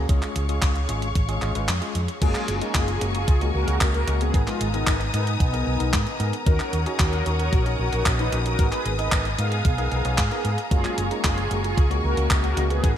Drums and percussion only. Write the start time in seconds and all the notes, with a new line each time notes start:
0.09 kick, closed hi-hat
0.23 clap, closed hi-hat
0.36 closed hi-hat
0.49 closed hi-hat
0.62 kick, clap, closed hi-hat
0.76 closed hi-hat
0.89 closed hi-hat
1.02 closed hi-hat
1.15 kick, closed hi-hat
1.29 closed hi-hat
1.42 clap, closed hi-hat
1.55 closed hi-hat
1.69 clap, closed hi-hat
1.82 closed hi-hat
1.95 closed hi-hat
2.08 closed hi-hat
2.22 kick, closed hi-hat, crash
2.35 clap, closed hi-hat
2.48 closed hi-hat
2.62 closed hi-hat
2.75 kick, clap, closed hi-hat
2.88 closed hi-hat
3.01 closed hi-hat
3.15 closed hi-hat
3.28 kick, closed hi-hat
3.41 closed hi-hat
3.68 closed hi-hat
3.81 kick, clap, closed hi-hat
3.94 closed hi-hat
4.08 closed hi-hat
4.21 closed hi-hat
4.34 kick, closed hi-hat
4.47 clap, closed hi-hat
4.61 closed hi-hat
4.74 closed hi-hat
4.87 kick, clap, closed hi-hat
5.01 closed hi-hat
5.14 closed hi-hat
5.27 closed hi-hat
5.40 kick, closed hi-hat
5.54 closed hi-hat
5.80 closed hi-hat
5.93 kick, clap, closed hi-hat
6.07 closed hi-hat
6.20 closed hi-hat
6.33 closed hi-hat
6.46 kick, closed hi-hat
6.60 clap, closed hi-hat
6.73 closed hi-hat
6.86 closed hi-hat
6.99 kick, clap, closed hi-hat
7.13 closed hi-hat
7.26 closed hi-hat
7.39 closed hi-hat
7.53 kick, closed hi-hat
7.66 closed hi-hat
7.93 closed hi-hat
8.06 kick, clap, closed hi-hat
8.19 closed hi-hat
8.32 closed hi-hat
8.46 closed hi-hat
8.59 kick, closed hi-hat
8.72 clap, closed hi-hat
8.86 closed hi-hat
8.99 closed hi-hat
9.12 kick, clap, closed hi-hat
9.25 closed hi-hat
9.39 closed hi-hat
9.52 closed hi-hat
9.65 kick, closed hi-hat
9.78 closed hi-hat
9.92 closed hi-hat
10.05 closed hi-hat
10.18 kick, clap, closed hi-hat
10.31 closed hi-hat
10.45 closed hi-hat
10.58 closed hi-hat
10.71 kick, closed hi-hat
10.85 clap, closed hi-hat
10.98 closed hi-hat
11.11 closed hi-hat
11.24 kick, clap, closed hi-hat
11.38 closed hi-hat
11.51 closed hi-hat
11.64 closed hi-hat
11.77 kick, closed hi-hat
11.91 closed hi-hat
12.17 closed hi-hat
12.31 kick, clap, closed hi-hat
12.44 closed hi-hat
12.57 closed hi-hat
12.70 closed hi-hat
12.84 kick, closed hi-hat